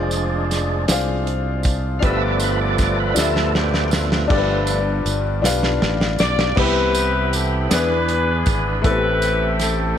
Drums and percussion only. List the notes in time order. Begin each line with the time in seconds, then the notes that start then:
0.11 closed hi-hat, tambourine
0.51 snare, closed hi-hat, tambourine
0.88 snare, closed hi-hat, tambourine
1.27 closed hi-hat
1.63 kick, closed hi-hat, tambourine
2.02 kick, closed hi-hat
2.40 closed hi-hat, tambourine
2.78 kick, snare, closed hi-hat, tambourine
3.16 snare, tambourine
3.36 snare
3.55 snare
3.74 snare
3.91 snare, tambourine
4.12 snare
4.30 kick, crash
4.67 closed hi-hat, tambourine
5.06 closed hi-hat, tambourine
5.44 snare, tambourine
5.63 snare
5.82 snare
6.01 snare
6.19 snare, tambourine
6.39 snare
6.57 kick, crash
6.95 closed hi-hat, tambourine
7.33 closed hi-hat, tambourine
7.71 snare, closed hi-hat, tambourine
8.08 closed hi-hat
8.46 kick, closed hi-hat, tambourine
8.84 kick, closed hi-hat
9.22 closed hi-hat, tambourine
9.59 snare, closed hi-hat, tambourine